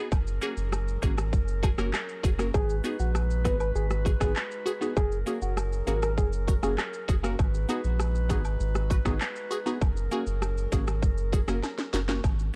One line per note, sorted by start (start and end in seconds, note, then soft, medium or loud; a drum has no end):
0.12 0.39 F#1 loud
0.12 2.52 F#3 medium
0.12 2.52 C#4 medium
0.12 2.52 G#4 medium
0.12 2.52 A#4 medium
0.12 kick loud
0.12 high woodblock medium
0.12 shaker medium
0.27 shaker medium
0.41 0.54 A#3 medium
0.41 0.54 C#4 medium
0.41 0.54 F#4 medium
0.41 0.55 G#4 loud
0.41 closed hi-hat medium
0.41 cabasa medium
0.41 shaker medium
0.57 0.97 F#1 medium
0.57 shaker medium
0.72 cross-stick loud
0.72 high woodblock medium
0.72 shaker medium
0.88 shaker medium
1.02 1.34 G#1 medium
1.02 1.15 A#3 medium
1.02 1.15 C#4 medium
1.02 1.15 F#4 medium
1.02 1.15 G#4 loud
1.02 kick loud
1.02 closed hi-hat medium
1.02 cabasa medium
1.02 shaker medium
1.18 cross-stick loud
1.18 high woodblock medium
1.18 shaker medium
1.33 1.73 F#1 loud
1.33 kick loud
1.33 shaker medium
1.48 shaker medium
1.63 1.69 F#4 loud
1.63 1.70 G#4 loud
1.63 kick medium
1.63 closed hi-hat medium
1.63 cabasa medium
1.63 high woodblock medium
1.63 shaker soft
1.78 1.92 F#1 medium
1.78 1.90 A#3 medium
1.78 1.90 C#4 medium
1.78 1.91 F#4 medium
1.78 1.91 A#4 loud
1.78 cross-stick loud
1.78 shaker medium
1.93 cross-stick medium
1.93 clap medium
1.93 high woodblock medium
1.93 shaker medium
2.09 shaker medium
2.23 2.51 F#1 medium
2.23 2.30 F#4 medium
2.23 2.30 G#4 loud
2.23 kick loud
2.23 closed hi-hat medium
2.23 cabasa medium
2.23 shaker medium
2.39 2.51 A#3 medium
2.39 2.51 C#4 medium
2.39 2.51 F#4 medium
2.39 2.52 A#4 medium
2.39 cross-stick loud
2.39 shaker medium
2.54 2.81 G#1 loud
2.54 4.94 G#3 medium
2.54 4.94 D#4 medium
2.54 4.94 F#4 medium
2.54 2.76 G#4 loud
2.54 4.94 B4 medium
2.54 kick loud
2.54 high woodblock medium
2.54 shaker medium
2.69 shaker medium
2.84 2.96 B3 medium
2.84 2.97 D#4 medium
2.84 2.97 F#4 medium
2.84 2.97 G#4 medium
2.84 closed hi-hat medium
2.84 cabasa medium
2.84 shaker medium
2.99 3.47 A#1 medium
2.99 3.10 F#4 medium
2.99 shaker medium
3.15 cross-stick loud
3.15 high woodblock medium
3.15 shaker medium
3.30 shaker medium
3.44 3.72 G#1 medium
3.44 3.57 B3 medium
3.44 3.57 D#4 medium
3.44 3.57 F#4 medium
3.44 3.58 G#4 medium
3.44 3.56 B4 medium
3.44 kick medium
3.44 cross-stick medium
3.44 closed hi-hat medium
3.44 cabasa medium
3.44 shaker medium
3.60 3.71 B4 medium
3.60 high woodblock medium
3.60 shaker medium
3.75 4.16 G#1 loud
3.75 3.86 G#4 medium
3.75 shaker medium
3.90 cross-stick loud
3.90 shaker medium
4.05 4.11 F#4 medium
4.05 4.12 G#4 medium
4.05 kick loud
4.05 closed hi-hat medium
4.05 cabasa medium
4.05 shaker soft
4.20 4.34 G#1 medium
4.20 4.33 B3 medium
4.20 4.33 D#4 medium
4.20 4.33 F#4 medium
4.20 4.32 G#4 medium
4.20 4.33 G#4 medium
4.20 kick medium
4.20 cross-stick loud
4.20 shaker medium
4.36 clap medium
4.36 high woodblock medium
4.36 shaker medium
4.51 shaker medium
4.66 4.72 F#4 medium
4.66 4.73 G#4 loud
4.66 closed hi-hat medium
4.66 cabasa medium
4.66 shaker medium
4.81 4.93 B3 medium
4.81 4.94 D#4 medium
4.81 4.94 F#4 medium
4.81 4.94 G#4 medium
4.81 shaker medium
4.97 5.23 F#1 loud
4.97 7.22 F#3 medium
4.97 7.22 C#4 medium
4.97 7.22 G#4 medium
4.97 5.18 G#4 loud
4.97 7.22 A#4 medium
4.97 kick loud
4.97 high woodblock medium
4.97 shaker medium
5.12 shaker medium
5.26 5.39 A#3 medium
5.26 5.39 C#4 medium
5.26 5.39 F#4 medium
5.26 5.39 G#4 medium
5.26 closed hi-hat medium
5.26 cabasa medium
5.26 shaker medium
5.42 5.82 F#1 medium
5.42 5.53 F#4 medium
5.42 shaker medium
5.57 cross-stick loud
5.57 high woodblock medium
5.57 shaker medium
5.73 shaker medium
5.87 6.19 G#1 medium
5.87 5.99 A#3 medium
5.87 6.00 C#4 medium
5.87 6.00 F#4 medium
5.87 6.00 G#4 medium
5.87 5.98 A#4 medium
5.87 closed hi-hat medium
5.87 cabasa medium
5.87 shaker medium
6.02 6.13 A#4 medium
6.02 cross-stick loud
6.02 high woodblock medium
6.02 shaker medium
6.18 6.58 F#1 loud
6.18 6.28 G#4 medium
6.18 kick loud
6.18 shaker medium
6.33 shaker medium
6.47 6.54 F#4 medium
6.47 6.55 A#4 medium
6.47 kick loud
6.47 closed hi-hat medium
6.47 cabasa medium
6.47 shaker medium
6.63 6.77 F#1 medium
6.63 6.75 A#3 medium
6.63 6.75 C#4 medium
6.63 6.76 F#4 medium
6.63 6.74 G#4 medium
6.63 6.76 G#4 medium
6.63 cross-stick loud
6.63 shaker medium
6.78 cross-stick loud
6.78 clap medium
6.78 high woodblock medium
6.78 shaker medium
6.93 shaker medium
7.08 7.35 F#1 medium
7.08 7.15 F#4 medium
7.08 7.15 G#4 loud
7.08 kick loud
7.08 closed hi-hat medium
7.08 cabasa medium
7.08 shaker medium
7.23 7.36 A#3 medium
7.23 7.36 C#4 medium
7.23 7.36 F#4 medium
7.23 7.36 A#4 medium
7.23 cross-stick loud
7.23 shaker medium
7.39 7.66 G#1 loud
7.39 9.79 G#3 medium
7.39 9.79 D#4 medium
7.39 9.79 F#4 medium
7.39 9.79 B4 medium
7.39 kick loud
7.39 high woodblock medium
7.39 shaker medium
7.54 shaker medium
7.69 7.81 B3 medium
7.69 7.81 D#4 medium
7.69 7.82 F#4 medium
7.69 7.82 G#4 loud
7.69 closed hi-hat medium
7.69 cabasa medium
7.69 shaker medium
7.84 8.31 A#1 medium
7.84 shaker medium
8.00 cross-stick loud
8.00 high woodblock medium
8.00 shaker medium
8.15 shaker medium
8.29 8.57 G#1 loud
8.29 8.42 B3 medium
8.29 8.42 D#4 medium
8.29 8.42 F#4 medium
8.29 8.42 G#4 loud
8.29 kick medium
8.29 cross-stick loud
8.29 closed hi-hat medium
8.29 cabasa medium
8.29 shaker medium
8.45 high woodblock medium
8.45 shaker medium
8.60 9.00 G#1 loud
8.60 shaker medium
8.75 cross-stick loud
8.75 shaker medium
8.90 8.96 F#4 medium
8.90 8.97 B4 loud
8.90 kick loud
8.90 closed hi-hat medium
8.90 cabasa medium
8.90 shaker medium
9.05 9.19 G#1 medium
9.05 9.18 B3 medium
9.05 9.18 D#4 medium
9.05 9.18 F#4 medium
9.05 9.18 G#4 medium
9.05 kick medium
9.05 cross-stick loud
9.05 shaker medium
9.21 clap medium
9.21 high woodblock medium
9.21 shaker medium
9.36 shaker medium
9.51 9.57 F#4 medium
9.51 9.58 G#4 loud
9.51 closed hi-hat medium
9.51 cabasa medium
9.51 shaker medium
9.66 9.78 B3 medium
9.66 9.78 D#4 medium
9.66 9.79 F#4 medium
9.66 9.79 G#4 loud
9.66 shaker medium
9.81 10.08 F#1 loud
9.81 12.22 F#3 medium
9.81 12.22 C#4 medium
9.81 12.22 G#4 medium
9.81 12.22 A#4 medium
9.81 kick loud
9.81 high woodblock medium
9.81 shaker medium
9.97 shaker medium
10.11 10.24 A#3 medium
10.11 10.24 C#4 medium
10.11 10.24 F#4 medium
10.11 10.24 G#4 loud
10.11 closed hi-hat medium
10.11 cabasa medium
10.11 shaker medium
10.27 10.67 F#1 medium
10.27 shaker medium
10.42 cross-stick loud
10.42 high woodblock medium
10.42 shaker medium
10.58 shaker medium
10.72 11.04 G#1 medium
10.72 10.84 A#3 medium
10.72 10.85 C#4 medium
10.72 10.85 F#4 medium
10.72 10.85 G#4 loud
10.72 kick medium
10.72 closed hi-hat medium
10.72 cabasa medium
10.72 shaker medium
10.87 cross-stick loud
10.87 high woodblock medium
10.87 shaker medium
11.03 11.43 F#1 loud
11.03 kick loud
11.03 shaker medium
11.18 shaker medium
11.33 11.39 F#4 medium
11.33 11.39 G#4 loud
11.33 kick loud
11.33 closed hi-hat medium
11.33 cabasa medium
11.33 shaker medium
11.48 11.62 F#1 medium
11.48 11.60 A#3 medium
11.48 11.60 C#4 medium
11.48 11.60 F#4 medium
11.48 11.61 A#4 loud
11.48 cross-stick loud
11.48 shaker medium
11.63 snare medium
11.63 high woodblock medium
11.63 shaker medium
11.78 snare medium
11.78 shaker medium
11.93 12.20 F#1 medium
11.93 11.99 F#4 medium
11.93 12.00 A#4 loud
11.93 snare loud
11.93 closed hi-hat medium
11.93 cabasa medium
11.93 shaker medium
12.08 12.21 A#3 medium
12.08 12.21 C#4 medium
12.08 12.21 F#4 medium
12.08 12.21 A#4 medium
12.08 snare loud
12.08 shaker medium
12.24 12.51 G#1 loud
12.24 kick loud
12.24 high woodblock medium
12.24 shaker medium
12.39 shaker medium